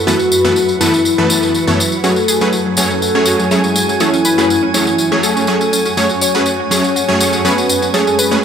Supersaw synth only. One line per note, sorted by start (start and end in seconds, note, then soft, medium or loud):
0.07 0.15 F#2 medium
0.07 0.15 E3 medium
0.07 0.15 A3 medium
0.07 0.15 B3 medium
0.07 0.15 A4 medium
0.07 0.15 B4 medium
0.45 0.52 F#2 medium
0.45 0.52 E3 medium
0.45 0.52 A3 medium
0.45 0.52 B3 medium
0.45 0.52 A4 medium
0.45 0.52 B4 medium
0.81 0.93 F#2 medium
0.81 0.93 E3 medium
0.81 0.93 A3 medium
0.81 0.93 B3 medium
0.81 0.93 A4 medium
0.81 0.93 B4 medium
1.18 1.52 F#2 medium
1.18 1.52 E3 medium
1.18 1.52 A3 medium
1.18 1.52 B3 medium
1.18 1.52 A4 medium
1.18 1.52 B4 loud
1.67 1.79 F#2 medium
1.67 1.79 E3 medium
1.67 1.79 A3 medium
1.67 1.79 B3 medium
1.67 1.79 A4 medium
1.67 1.79 C#5 medium
2.04 2.12 F#3 medium
2.04 2.12 A3 medium
2.04 2.12 C#4 medium
2.04 2.12 G#4 medium
2.04 2.12 C#5 medium
2.41 2.48 F#3 medium
2.41 2.48 A3 medium
2.41 2.48 C#4 medium
2.41 2.48 G#4 medium
2.41 2.48 B4 medium
2.77 2.90 F#3 medium
2.77 2.90 A3 medium
2.77 2.90 C#4 medium
2.77 2.90 G#4 medium
2.77 2.90 C#5 medium
3.15 3.48 F#3 medium
3.15 3.48 A3 medium
3.15 3.48 C#4 medium
3.15 3.48 G#4 medium
3.15 3.48 C#5 medium
3.51 3.59 F#3 medium
3.51 3.59 A3 medium
3.51 3.59 C#4 medium
3.51 3.59 G#4 medium
3.51 3.59 C#5 medium
4.00 4.08 F#3 medium
4.00 4.08 A3 medium
4.00 4.08 C#4 medium
4.00 4.08 G#4 medium
4.00 4.08 C#5 medium
4.38 4.45 F#3 medium
4.38 4.45 A3 medium
4.38 4.45 C#4 medium
4.38 4.45 G#4 medium
4.38 4.45 B4 medium
4.74 4.87 F#3 medium
4.74 4.87 A3 medium
4.74 4.87 C#4 medium
4.74 4.87 G#4 medium
4.74 4.87 C#5 medium
5.12 5.45 F#3 medium
5.12 5.45 A3 medium
5.12 5.45 C#4 medium
5.12 5.45 G#4 medium
5.12 5.45 C#5 medium
5.48 5.56 F#3 medium
5.48 5.56 A3 medium
5.48 5.56 C#4 medium
5.48 5.56 G#4 medium
5.48 5.56 C#5 medium
5.97 6.05 F#3 medium
5.97 6.05 A3 medium
5.97 6.05 C#4 medium
5.97 6.05 G#4 medium
5.97 6.05 C#5 medium
6.35 6.42 F#3 medium
6.35 6.42 A3 medium
6.35 6.42 C#4 medium
6.35 6.42 G#4 medium
6.35 6.42 B4 medium
6.71 6.84 F#3 medium
6.71 6.84 A3 medium
6.71 6.84 C#4 medium
6.71 6.84 G#4 medium
6.71 6.84 C#5 medium
7.09 7.42 F#3 medium
7.09 7.42 A3 medium
7.09 7.42 C#4 medium
7.09 7.42 G#4 medium
7.09 7.42 C#5 medium
7.45 7.53 F#3 medium
7.45 7.53 A3 medium
7.45 7.53 C#4 medium
7.45 7.53 G#4 medium
7.45 7.53 C#5 medium
7.94 8.02 F#3 medium
7.94 8.02 A3 medium
7.94 8.02 C#4 medium
7.94 8.02 G#4 medium
7.94 8.02 C#5 medium
8.31 8.39 F#3 medium
8.31 8.39 A3 medium
8.31 8.39 C#4 medium
8.31 8.39 G#4 medium
8.31 8.39 B4 medium